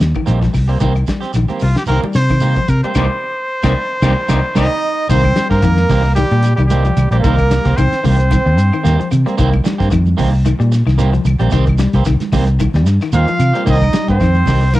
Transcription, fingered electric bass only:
0.00 D#2
0.28 A#1
0.54 C2
0.81 C2
1.35 A#1
1.62 C2
1.88 C2
2.03 muted fingered electric bass stroke
2.15 C3
2.69 C3
2.84 muted fingered electric bass stroke
2.96 C2
3.64 C2
4.02 C2
4.29 C2
4.56 C2
5.09 C2
5.38 muted fingered electric bass stroke
5.51 G2
5.63 F2
5.89 C2
6.31 A#2
6.58 C2
6.97 C2
7.11 A#1
7.24 C2
7.66 C2
7.77 C2
7.92 muted fingered electric bass stroke
8.05 C2
8.46 D#2
8.58 G2
8.85 D#2
9.12 C3
9.39 C2
9.80 G2
9.92 F2
10.19 C2
10.60 A#2
10.86 C2
11.25 C2
11.40 A#1
11.52 C2
11.94 C2
12.06 C2
12.32 C2
12.74 D#2
12.86 G2
13.13 D#2
13.28 muted fingered electric bass stroke
13.39 C3
13.67 C2
13.94 muted fingered electric bass stroke
14.08 G2
14.21 F2
14.47 C2

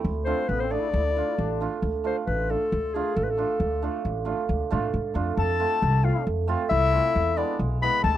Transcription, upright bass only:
0.04 D2
0.49 A1
0.94 D2
1.38 A1
1.82 D2
2.27 A1
2.72 D2
3.16 A1
3.60 D2
4.05 A1
4.49 D2
4.72 A2
4.94 G#2
5.15 F2
5.37 F2
5.82 C2
6.27 F2
6.71 C2
7.16 E2
7.59 B1
8.04 D2

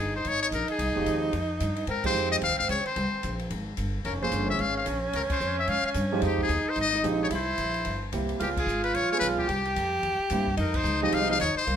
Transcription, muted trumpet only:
Already playing: G#4
0.16 C5
0.28 C#5
0.42 C#5
0.54 A#4
0.71 G#4
1.90 A#4
2.06 C5
2.32 D#5
2.44 F5
2.59 F5
2.70 C#5
2.87 C5
4.06 A#4
4.22 C5
4.50 E5
4.61 F5
4.77 F5
5.16 A#4
5.32 C5
5.59 E5
5.69 F5
5.86 F5
6.27 G4
6.42 G#4
6.69 C5
6.81 D#5
7.23 C#5
7.35 C5
8.42 G4
8.59 G#4
8.84 B4
8.95 C#5
9.12 C#5
9.20 B4
9.39 G4
10.60 A#4
10.76 C5
11.04 D#5
11.14 F5
11.31 F5
11.41 C#5
11.57 C5

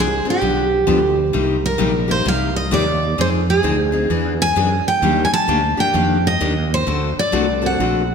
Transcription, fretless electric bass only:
Already playing: C2
0.25 muted fretless electric bass stroke
0.42 B1
0.87 D2
1.34 C2
1.80 A#1
2.25 C2
2.72 D#2
3.18 F2
3.64 D2
4.09 E2
4.56 F#2
4.85 muted fretless electric bass stroke
5.02 D#2
5.31 muted fretless electric bass stroke
5.47 D2
5.77 muted fretless electric bass stroke
5.94 F2
6.41 D#2
6.87 D2
7.33 C2
7.79 A#1

